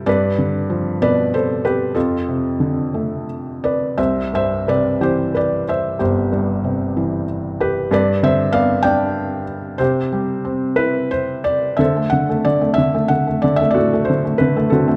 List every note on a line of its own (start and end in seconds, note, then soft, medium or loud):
0.06 1.92 G2 medium
0.06 0.98 B4 medium
0.06 0.97 D5 medium
0.38 1.60 D3 soft
0.70 1.92 F3 soft
1.02 1.93 B2 soft
1.02 1.31 B4 medium
1.02 1.34 D5 medium
1.34 1.63 A4 medium
1.34 1.63 C5 medium
1.65 1.94 G4 medium
1.65 1.94 B4 medium
1.95 3.94 F2 medium
1.95 3.24 F4 soft
1.95 3.24 A4 medium
2.28 3.59 C3 soft
2.60 3.94 D3 soft
2.94 3.95 A3 soft
3.64 3.97 B4 medium
3.64 4.00 D5 medium
3.97 5.95 C2 medium
3.97 4.30 C5 medium
3.97 4.30 E5 medium
4.33 5.63 G2 soft
4.33 4.66 C5 medium
4.33 4.69 E5 medium
4.67 5.95 C3 soft
4.67 4.99 B4 medium
4.67 4.99 D5 medium
5.01 6.28 E3 soft
5.01 5.32 G4 medium
5.01 5.36 C5 medium
5.34 5.65 B4 medium
5.34 5.69 D5 medium
5.68 5.98 C5 medium
5.68 6.01 E5 medium
5.99 7.87 G1 medium
5.99 7.24 G4 soft
5.99 7.25 C5 medium
6.32 7.56 G2 soft
6.64 7.87 C3 soft
6.97 7.88 E3 soft
7.60 7.89 G4 medium
7.60 7.89 B4 medium
7.91 9.75 G2 medium
7.91 8.21 B4 medium
7.91 8.21 D5 medium
8.23 9.44 D3 soft
8.23 8.52 C5 medium
8.23 8.55 E5 medium
8.52 9.75 B3 medium
8.52 8.82 D5 medium
8.52 8.82 F5 loud
8.83 9.77 D4 medium
8.83 9.75 D5 medium
8.83 9.81 G5 loud
9.78 11.75 C3 medium
9.78 11.09 G4 medium
9.78 11.08 C5 medium
10.12 11.43 G3 medium
10.45 11.76 C4 medium
10.76 11.76 E4 medium
10.76 11.12 B4 medium
11.11 11.43 C5 medium
11.44 11.79 D5 medium
11.77 12.11 D3 medium
11.77 12.75 A4 medium
11.77 12.09 E5 medium
11.81 12.75 C5 medium
11.97 12.28 A3 soft
12.10 12.44 D3 soft
12.10 12.45 F#5 medium
12.29 12.60 A3 soft
12.45 12.76 D3 soft
12.45 12.79 D5 medium
12.61 12.93 A3 soft
12.74 13.10 E5 medium
12.78 13.08 D3 medium
12.95 13.26 A3 soft
13.08 13.42 D3 soft
13.08 13.44 F#5 medium
13.27 13.59 A3 soft
13.42 14.08 D3 soft
13.42 13.60 D5 medium
13.56 13.75 E5 medium
13.61 13.92 A3 soft
13.71 14.67 F#4 medium
13.71 14.07 D5 medium
13.75 14.96 A2 medium
13.75 14.67 A4 medium
13.93 14.24 A3 soft
14.05 14.36 C5 medium
14.10 14.39 D3 soft
14.25 14.55 A3 soft
14.38 14.71 D3 medium
14.38 14.69 B4 medium
14.56 14.86 A3 medium
14.70 14.96 D3 medium
14.70 14.96 C4 medium
14.70 14.96 F#4 soft
14.70 14.96 A4 medium
14.88 14.96 A3 soft